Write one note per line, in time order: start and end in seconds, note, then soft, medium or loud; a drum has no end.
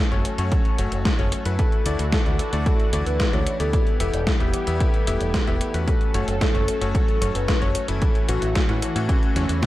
0.00 1.55 F#3 medium
0.00 1.55 A3 medium
0.00 1.55 C#4 medium
0.00 1.55 A4 medium
0.12 0.23 F#1 medium
0.12 0.35 A3 medium
0.12 0.35 C#4 medium
0.12 0.35 F#4 medium
0.12 0.35 C#5 medium
0.12 closed hi-hat soft
0.25 closed hi-hat medium
0.38 0.50 F#2 medium
0.38 0.76 A3 medium
0.38 0.76 C#4 medium
0.38 0.76 F#4 medium
0.38 0.76 C#5 loud
0.38 closed hi-hat soft
0.52 kick loud
0.52 closed hi-hat soft
0.65 closed hi-hat soft
0.78 0.90 F#1 medium
0.78 1.16 A3 medium
0.78 1.16 C#4 medium
0.78 1.16 F#4 medium
0.78 1.16 C#5 loud
0.78 closed hi-hat medium
0.92 1.04 F#1 medium
0.92 closed hi-hat soft
1.05 kick loud
1.05 snare loud
1.05 closed hi-hat soft
1.19 1.30 F#1 medium
1.19 1.42 A3 medium
1.19 1.42 C#4 medium
1.19 1.42 F#4 medium
1.19 1.42 C#5 medium
1.19 closed hi-hat soft
1.32 closed hi-hat medium
1.45 1.57 F#2 medium
1.45 1.83 A3 medium
1.45 1.83 E4 medium
1.45 1.83 F#4 medium
1.45 1.83 B4 medium
1.45 closed hi-hat soft
1.59 5.84 E3 medium
1.59 3.71 A3 medium
1.59 3.71 D4 medium
1.59 3.71 F#4 medium
1.59 2.07 A4 loud
1.59 kick loud
1.59 closed hi-hat soft
1.72 closed hi-hat soft
1.86 1.97 D2 medium
1.86 2.03 A3 medium
1.86 2.03 E4 medium
1.86 2.03 F#4 medium
1.86 2.03 D5 loud
1.86 closed hi-hat medium
1.99 2.11 D2 medium
1.99 closed hi-hat soft
2.12 2.60 A4 medium
2.12 kick loud
2.12 snare loud
2.12 closed hi-hat soft
2.26 2.38 D2 medium
2.26 2.50 A3 medium
2.26 2.50 E4 medium
2.26 2.50 F#4 medium
2.26 2.50 D5 medium
2.26 closed hi-hat soft
2.39 closed hi-hat medium
2.53 2.64 D2 medium
2.53 2.90 A3 loud
2.53 2.90 E4 medium
2.53 2.90 F#4 medium
2.53 2.90 D5 loud
2.53 closed hi-hat soft
2.66 3.02 A4 medium
2.66 kick loud
2.66 closed hi-hat soft
2.80 closed hi-hat soft
2.93 3.05 D2 medium
2.93 3.30 A3 medium
2.93 3.30 E4 medium
2.93 3.30 F#4 medium
2.93 3.30 D5 loud
2.93 closed hi-hat medium
3.06 3.18 D2 medium
3.06 3.30 B4 medium
3.06 closed hi-hat soft
3.20 kick loud
3.20 snare loud
3.20 closed hi-hat soft
3.33 3.45 D2 medium
3.33 3.57 A3 medium
3.33 3.57 E4 medium
3.33 3.57 F#4 medium
3.33 3.57 C#5 medium
3.33 3.57 D5 loud
3.33 closed hi-hat soft
3.47 closed hi-hat medium
3.60 3.71 D2 medium
3.60 3.97 B3 medium
3.60 3.97 E4 medium
3.60 3.97 G4 medium
3.60 3.96 A4 loud
3.60 3.97 D5 loud
3.60 closed hi-hat soft
3.73 5.85 G3 medium
3.73 5.85 B3 medium
3.73 5.85 G4 medium
3.73 kick loud
3.73 closed hi-hat medium
3.87 closed hi-hat soft
4.00 4.12 E1 medium
4.00 4.17 B3 medium
4.00 4.17 E4 medium
4.00 4.17 G4 medium
4.00 4.36 A4 medium
4.00 4.17 E5 loud
4.00 closed hi-hat medium
4.14 4.25 E1 medium
4.14 closed hi-hat medium
4.27 kick loud
4.27 snare loud
4.27 closed hi-hat soft
4.40 4.52 E1 medium
4.40 4.64 B3 medium
4.40 4.64 E4 medium
4.40 4.76 G4 medium
4.40 4.64 G4 medium
4.40 4.64 E5 medium
4.40 closed hi-hat soft
4.54 closed hi-hat medium
4.67 4.79 E2 medium
4.67 5.04 B3 loud
4.67 5.04 E4 medium
4.67 5.04 G4 medium
4.67 5.04 E5 loud
4.67 closed hi-hat soft
4.80 5.77 A4 medium
4.80 kick loud
4.80 closed hi-hat medium
4.94 closed hi-hat soft
5.07 5.19 E1 medium
5.07 5.44 B3 medium
5.07 5.44 E4 medium
5.07 5.44 G4 medium
5.07 5.44 E5 loud
5.07 closed hi-hat medium
5.21 5.32 E1 medium
5.21 closed hi-hat soft
5.34 kick loud
5.34 snare loud
5.34 closed hi-hat soft
5.47 5.59 E1 medium
5.47 5.71 B3 medium
5.47 5.71 E4 medium
5.47 5.71 G4 medium
5.47 5.71 E5 medium
5.47 closed hi-hat soft
5.61 closed hi-hat medium
5.74 5.86 E2 medium
5.74 6.11 A3 medium
5.74 6.11 C#4 medium
5.74 6.11 F#4 medium
5.74 6.11 B4 medium
5.74 closed hi-hat soft
5.88 8.00 F#3 medium
5.88 8.00 A3 medium
5.88 9.66 C#4 medium
5.88 6.35 A4 loud
5.88 8.00 A4 medium
5.88 kick loud
5.88 closed hi-hat medium
6.01 closed hi-hat soft
6.14 6.26 F#1 medium
6.14 6.32 A3 medium
6.14 6.32 C#4 medium
6.14 6.32 F#4 medium
6.14 6.32 C#5 loud
6.14 closed hi-hat medium
6.28 6.39 F#1 medium
6.28 closed hi-hat medium
6.41 6.89 A4 medium
6.41 kick loud
6.41 snare loud
6.41 closed hi-hat medium
6.55 6.66 F#1 medium
6.55 6.78 A3 medium
6.55 6.78 C#4 medium
6.55 6.78 F#4 medium
6.55 6.78 C#5 medium
6.55 closed hi-hat soft
6.68 closed hi-hat medium
6.81 6.93 F#1 medium
6.81 7.18 A3 loud
6.81 7.18 C#4 medium
6.81 7.18 F#4 medium
6.81 7.18 C#5 loud
6.81 closed hi-hat soft
6.95 7.31 A4 medium
6.95 kick loud
6.95 closed hi-hat medium
7.08 closed hi-hat soft
7.21 7.33 F#1 medium
7.21 7.58 A3 medium
7.21 7.58 C#4 medium
7.21 7.58 F#4 medium
7.21 7.58 C#5 loud
7.21 closed hi-hat medium
7.35 7.46 F#1 medium
7.35 7.59 B4 medium
7.35 closed hi-hat soft
7.48 kick loud
7.48 snare loud
7.48 closed hi-hat medium
7.61 7.73 F#1 medium
7.61 7.85 A3 medium
7.61 7.85 C#4 medium
7.61 7.85 F#4 medium
7.61 7.85 C#5 medium
7.61 7.85 C#5 loud
7.61 closed hi-hat soft
7.75 closed hi-hat medium
7.88 8.00 F#1 medium
7.88 8.25 E3 medium
7.88 8.25 A3 medium
7.88 8.25 C#4 medium
7.88 8.25 E4 loud
7.88 8.24 A4 loud
7.88 closed hi-hat medium
8.02 9.66 E3 medium
8.02 9.66 A3 medium
8.02 9.66 F#4 medium
8.02 kick loud
8.02 closed hi-hat medium
8.15 closed hi-hat soft
8.29 8.40 A1 medium
8.29 8.46 E3 medium
8.29 8.46 A3 medium
8.29 8.46 C#4 medium
8.29 8.46 F#4 loud
8.29 8.64 F#4 medium
8.29 closed hi-hat medium
8.42 8.54 A1 medium
8.42 closed hi-hat medium
8.55 kick loud
8.55 snare loud
8.55 closed hi-hat medium
8.69 8.80 A1 medium
8.69 8.92 E3 medium
8.69 8.92 A3 medium
8.69 8.92 C#4 medium
8.69 9.05 E4 medium
8.69 8.92 F#4 medium
8.69 closed hi-hat soft
8.82 closed hi-hat medium
8.96 9.07 A2 medium
8.96 9.33 E3 loud
8.96 9.33 A3 medium
8.96 9.33 C#4 medium
8.96 9.33 F#4 loud
8.96 closed hi-hat medium
9.09 9.66 C#4 loud
9.09 kick loud
9.09 closed hi-hat medium
9.23 closed hi-hat soft
9.36 9.47 E2 medium
9.36 9.66 E3 medium
9.36 9.66 A3 medium
9.36 9.66 C#4 medium
9.36 9.66 F#4 medium
9.36 snare soft
9.36 closed hi-hat medium
9.49 9.61 E2 medium
9.49 closed hi-hat soft
9.62 kick loud
9.62 snare loud
9.62 closed hi-hat medium
9.62 high tom medium